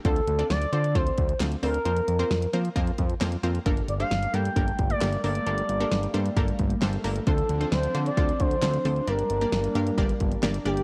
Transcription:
<<
  \new Staff \with { instrumentName = "Analog synth lead" } { \time 4/4 \key g \minor \tempo 4 = 133 a'4 d''8 d''8 c''4 r8 bes'8~ | bes'4. r2 r8 | r8 d''16 f''8. g''4~ g''16 d''8. d''8~ | d''2~ d''8 r4. |
a'4 c''8. d''8. c''4. | bes'2. r8 g'8 | }
  \new Staff \with { instrumentName = "Synth pluck" } { \time 4/4 \key g \minor <c' d' f' a' c''>8 r16 <c' d' f' a' d''>8 r16 <c' d' f' a' c''>16 r16 <c' d' f' a' c''>8 r8 <c' d' f' a' c''>16 r16 <c' d' f' a' c''>16 r16 | <bes c' f' bes' c''>8 r16 <bes c' f' bes' c''>8 r16 <bes c' f' bes' c''>16 r16 <bes c' f' bes' c''>8 r8 <bes c' f' bes' c''>16 r16 <bes c' f' bes' c''>16 r16 | <bes d' g' a' bes'>8 r16 <bes d' g' a' c''>8 r16 <bes d' g' a' bes'>16 r16 <bes d' g' a' bes'>8 r8 <bes d' g' a' bes'>16 r16 <bes d' g' a' bes'>16 r16 | <bes d' g' a' bes'>8 r16 <bes d' g' a' bes'>8 r16 <bes d' g' a' c''>16 r16 <bes d' g' a' bes'>8 r8 <bes d' g' a' c''>16 r16 <bes d' g' a' bes'>16 r16 |
<c' d' f' a' c''>8 r16 <c' d' f' a' c''>8 r16 <c' d' f' a' c''>16 r16 <c' d' f' a' c''>8 r8 <c' d' f' a' c''>16 r16 <c' d' f' a' c''>16 r16 | <bes d' g' bes' d''>8 r16 <bes d' g' bes' d''>8 r16 <bes d' g' bes' f''>16 r16 <bes d' g' bes' d''>8 r8 <bes d' g' bes' d''>16 r16 <bes d' g' bes' d''>16 r16 | }
  \new Staff \with { instrumentName = "Analog synth pad" } { \time 4/4 \key g \minor << { r1 | r1 | bes1~ | bes1 |
d'1~ | d'1 | } \\ { r1 | r1 | <g a>1~ | <g a>1 |
<f c'>1 | <g bes>1 | } >> }
  \new Staff \with { instrumentName = "Analog synth bass" } { \clef bass \time 4/4 \key g \minor d,8 d,8 d,8 d8 d,8 d,8 d,8 d,8 | f,8 f,8 f,8 f8 f,8 f,8 f,8 f,8 | g,,8 g,,8 g,,8 g,8 g,,8 g,,8 g,,8 g,,8 | g,,8 g,,8 g,,8 g,8 g,,8 g,,8 g,,8 g,,8 |
d,8 d,8 d,8 d8 d,8 d,8 d,8 d,8 | g,,8 g,,8 g,,8 g,8 g,,8 g,,8 g,,8 g,,8 | }
  \new DrumStaff \with { instrumentName = "Drums" } \drummode { \time 4/4 <hh bd>16 hh16 hh16 hh16 <hh sn>16 hh16 hh16 hh16 <hh bd>16 hh16 <hh bd>16 hh16 <hc hh sn>16 hh16 hho16 hh16 | hh16 hh16 hh16 hh16 <hh sn>16 hh16 hh16 hh16 <hh bd>16 hh16 <hh bd>16 hh16 <hc hh sn>16 hh16 hh16 hh16 | <hh bd>16 hh16 hh16 hh16 <hh sn>16 hh16 hh16 hh16 <hh bd>16 hh16 <hh bd>16 hh16 <hc hh sn>16 hh16 hho16 hh16 | hh16 hh16 hh16 hh16 <hh sn>16 hh16 hh16 hh16 <hh bd>16 hh16 <hh bd>16 hh16 <hc hh sn>16 hh16 hho16 hh16 |
<hh bd>16 hh16 hh16 hh16 <hh sn>16 hh16 hh16 hh16 <hh bd>16 hh16 <hh bd>16 hh16 <hc hh sn>16 hh16 hho16 hh16 | hh16 hh16 hh16 hh16 <hh sn>16 hh16 hh16 hh16 <hh bd>16 hh16 <hh bd>16 hh16 <hc hh sn>16 hh16 hh16 hh16 | }
>>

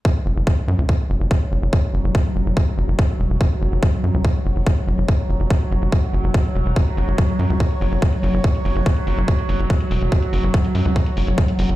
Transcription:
<<
  \new Staff \with { instrumentName = "Ambient pad" } { \clef bass \time 4/4 \tempo 4 = 143 fis1~ | fis1~ | fis1~ | fis1~ |
fis1~ | fis1~ | fis1 | }
  \new Staff \with { instrumentName = "Analog synth bass" } { \clef bass \time 4/4 r8 fis,,16 fis,,16 r8 fis,16 cis,16 r8 fis,,16 fis,,16 r8 fis,,16 fis,,16 | r8 fis,,16 fis,,16 r8 fis,,16 fis,,16 r8 fis,,16 fis,,16 r8 e,,16 e,,16 | r8 fis,,16 fis,,16 r8 fis,16 cis,16 r8 fis,,16 fis,,16 r8 fis,,16 fis,,16 | r8 fis,,16 fis,,16 r8 fis,,16 fis,,16 r8 fis,,16 fis,,16 r8 e,,16 e,,16 |
r8 fis,,16 fis,,16 r8 fis,16 cis,16 r8 fis,,16 fis,,16 r8 fis,,16 fis,,16 | r8 fis,,16 fis,,16 r8 fis,,16 fis,,16 r8 fis,,16 fis,,16 r8 e,,16 e,,16 | r8 fis,,16 fis,,16 r8 fis,16 cis,16 r8 fis,,16 fis,,16 r8 fis,,16 fis,,16 | }
  \new DrumStaff \with { instrumentName = "Drums" } \drummode { \time 4/4 bd16 hh16 hh16 hh16 bd16 hh16 hh8 bd16 hh16 hh16 hh16 bd16 hh16 hh16 hh16 | bd16 hh16 hh16 hh16 bd16 hh16 hh16 hh16 bd16 hh16 hh16 hh16 bd16 hh16 hh16 hh16 | bd16 hh16 hh16 hh16 bd16 hh16 hh16 hh16 <hh bd>16 hh16 hh16 hh16 <hh bd>16 hh16 hh16 hh16 | <hh bd>16 hh16 hh16 hh16 bd16 hh16 hh16 hh16 <hh bd>16 hh16 hh16 hh16 <hh bd>16 hh16 hh16 hh16 |
<hh bd>16 hh16 hho16 hh16 <hh bd>16 hh16 hho16 hh16 <hh bd>16 hh16 hho16 hh16 <hh bd>16 hh16 hho16 hh16 | <hh bd>16 hh16 hho16 hh16 <hh bd>16 hh16 hho16 hh16 <hh bd>16 hh16 hho16 hh16 <hh bd>16 hh16 hho16 hh16 | <hh bd>16 hh16 hho16 hh16 <hh bd>16 hh16 hho16 hh16 <hh bd>16 hh16 hho16 hh16 <hh bd>16 hh16 hho16 hh16 | }
>>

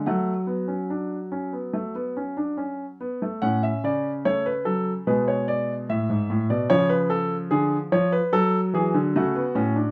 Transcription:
<<
  \new Staff \with { instrumentName = "Grand piano" } { \time 4/4 \key fis \minor \tempo 4 = 73 fis''2.~ fis''8 r8 | fis''16 e''16 d''8 cis''16 b'16 a'8 b'16 cis''16 d''8 e''8. d''16 | cis''16 b'16 a'8 gis'8 cis''16 b'16 a'8 gis'8 fis'4 | }
  \new Staff \with { instrumentName = "Grand piano" } { \clef bass \time 4/4 \key fis \minor << { a8 b16 cis'16 d'8 cis'16 b16 a16 b16 cis'16 d'16 cis'8 b16 a16 | cis'4 a8 fis8 gis2 | eis2 r4 a16 b16 cis'16 d'16 | } \\ { fis2.~ fis8 r8 | a,8 cis4. b,4 a,16 gis,16 a,16 b,16 | cis4 d8 eis8 fis8 e16 d16 cis8 a,8 | } >> }
>>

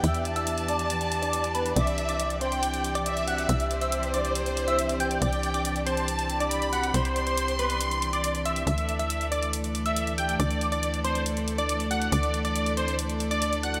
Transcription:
<<
  \new Staff \with { instrumentName = "Digital synth lead" } { \time 4/4 \key c \lydian \tempo 4 = 139 e'''8. e'''8. d'''8 r8. d'''8. b''8 | d'''8. d'''8. c'''8 r8. d'''8. fis'''8 | e'''8. e'''8. d'''8 r8. e'''8. g'''8 | d'''8. d'''8. c'''8 r8. d'''8. fis'''8 |
c'''8. c'''8. b''8 r8. d'''8. e'''8 | e'''8. e'''8. d'''8 r8. e'''8. g'''8 | d'''8. d'''8. c'''8 r8. d'''8. fis'''8 | d'''8. d'''8. c'''8 r8. d'''8. fis'''8 | }
  \new Staff \with { instrumentName = "Violin section" } { \time 4/4 \key c \lydian g''8 a''2.~ a''8 | e''4. g''4. e''4~ | e''8 c''2.~ c''8 | g''4. a''4. b''4~ |
b''8 c'''2.~ c'''8 | r1 | r1 | r1 | }
  \new Staff \with { instrumentName = "Supersaw synth" } { \time 4/4 \key c \lydian e''8. e''8. d''8 r8. d''8. b'8 | d''8. d''8. c''8 r8. d''8. fis''8 | e''8. e''8. d''8 r8. e''8. g''8 | d''8. d''8. c''8 r8. d''8. fis''8 |
c''8. c''8. b'8 r8. d''8. e''8 | e''8. e''8. d''8 r8. e''8. g''8 | d''8. d''8. c''8 r8. d''8. fis''8 | d''8. d''8. c''8 r8. d''8. fis''8 | }
  \new Staff \with { instrumentName = "String section" } { \time 4/4 \key c \lydian << { <e d' d''>1~ | <e d' d''>1~ | <e d' d''>1~ | <e d' d''>1~ |
<e d' d''>1 | <e d' d''>1~ | <e d' d''>1~ | <e d' d''>1 | } \\ { <b g'>1 | <c' g'>1~ | <c' g'>1~ | <c' g'>1~ |
<c' g'>1 | <a a'>1~ | <a a'>1~ | <a a'>1 | } >> }
  \new Staff \with { instrumentName = "Analog synth bass" } { \clef bass \time 4/4 \key c \lydian e,1 | c,1 | c,1 | c,1 |
c,1 | d,1 | d,1 | d,1 | }
  \new DrumStaff \with { instrumentName = "Drums" } \drummode { \time 4/4 hh16 hh16 hh16 hh16 hh16 hh16 hh16 hh16 hh16 hh16 hh16 hh16 hh16 hh16 hh16 hh16 | hh16 hh16 hh16 hh16 hh16 hh16 hh16 hh16 hh16 hh16 hh16 hh16 hh16 hh16 hh16 hh16 | hh16 hh16 hh16 hh16 hh16 hh16 hh16 hh16 hh16 hh16 hh16 hh16 hh16 hh16 hh16 hh16 | hh16 hh16 hh16 hh16 hh16 hh16 hh16 hh16 hh16 hh16 hh16 hh16 hh16 hh16 hh16 hh16 |
hh16 hh16 hh16 hh16 hh16 hh16 hh16 hh16 hh16 hh16 hh16 hh16 hh16 hh16 hh16 hh16 | hh16 hh16 hh16 hh16 hh16 hh16 hh16 hh16 hh16 hh16 hh16 hh16 hh16 hh16 hh16 hh16 | hh16 hh16 hh16 hh16 hh16 hh16 hh16 hh16 hh16 hh16 hh16 hh16 hh16 hh16 hh16 hh16 | hh16 hh16 hh16 hh16 hh16 hh16 hh16 hh16 hh16 hh16 hh16 hh16 hh16 hh16 hh16 hh16 | }
>>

